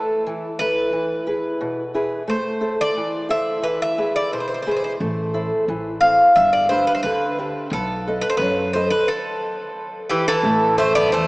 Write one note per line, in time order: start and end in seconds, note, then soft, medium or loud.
0.00 0.24 A3 medium
0.00 0.47 E4 soft
0.00 0.47 A4 soft
0.00 0.61 A4 medium
0.00 0.47 B4 soft
0.27 0.91 E3 medium
0.59 0.87 E4 soft
0.59 0.87 A4 soft
0.59 1.91 B4 medium
0.59 0.87 B4 soft
0.93 1.59 E3 medium
1.27 1.81 E4 soft
1.27 1.81 G#4 soft
1.27 1.81 B4 soft
1.61 2.27 B2 medium
1.94 2.22 E4 soft
1.94 2.22 G#4 soft
1.94 2.22 B4 soft
2.28 2.94 A3 medium
2.28 2.81 C5 medium
2.61 3.16 E4 soft
2.61 3.16 A4 soft
2.61 3.16 C5 soft
2.81 3.30 D5 medium
2.96 3.61 E3 medium
3.29 3.57 E4 soft
3.29 3.57 A4 soft
3.29 3.57 C5 soft
3.29 3.66 E5 medium
3.62 4.29 E3 medium
3.62 3.80 B4 medium
3.82 4.14 E5 medium
3.98 4.53 E4 soft
3.98 4.53 G#4 soft
3.98 4.53 B4 medium
4.16 4.32 D5 medium
4.32 4.98 B2 medium
4.32 4.39 C5 medium
4.40 4.47 C5 soft
4.48 4.53 C5 soft
4.54 4.61 C5 soft
4.62 4.70 C5 medium
4.66 4.94 E4 soft
4.66 4.94 G#4 soft
4.66 4.94 B4 soft
4.71 4.75 C5 soft
4.77 4.83 C5 soft
4.84 4.92 C5 medium
5.00 5.48 A1 loud
5.00 5.66 A3 medium
5.34 5.89 E4 soft
5.34 5.88 A4 soft
5.34 5.89 C5 soft
5.68 6.16 A1 medium
5.68 6.34 E3 medium
6.01 6.29 C4 soft
6.01 6.29 A4 soft
6.01 6.30 C5 soft
6.01 6.35 F5 medium
6.36 6.84 G1 medium
6.36 7.03 G3 medium
6.36 6.52 E5 medium
6.53 6.69 D5 medium
6.69 7.25 D4 soft
6.69 7.25 G4 soft
6.69 7.25 B4 medium
6.69 6.87 C5 medium
6.87 6.94 B4 medium
6.95 7.02 C5 medium
7.03 7.52 D2 medium
7.03 7.71 D3 medium
7.03 7.36 B4 medium
7.38 7.66 D4 soft
7.38 7.66 G4 soft
7.38 7.66 B4 soft
7.71 8.19 B1 loud
7.71 8.38 B3 medium
7.71 8.20 A4 medium
8.07 8.61 A4 soft
8.07 8.61 B4 soft
8.07 8.62 D#5 medium
8.21 8.29 B4 medium
8.30 8.37 C5 medium
8.37 8.87 F#2 medium
8.37 8.71 B4 loud
8.41 9.07 F#3 medium
8.73 9.02 A4 soft
8.73 9.02 B4 soft
8.73 8.90 C5 medium
8.73 9.02 D#5 medium
8.90 9.08 B4 medium
9.08 10.06 A4 medium
10.09 10.26 E3 medium
10.09 10.25 G4 medium
10.28 10.75 E3 medium
10.28 10.75 A4 loud
10.43 11.12 A1 medium
10.43 11.10 A3 medium
10.78 10.94 A3 medium
10.78 11.27 A4 soft
10.78 10.94 C5 medium
10.78 11.27 C5 soft
10.78 11.27 E5 medium
10.95 11.11 B3 medium
10.95 11.11 D5 loud
11.12 11.27 E2 medium
11.12 11.27 E3 medium
11.12 11.27 A3 medium
11.12 11.27 C5 medium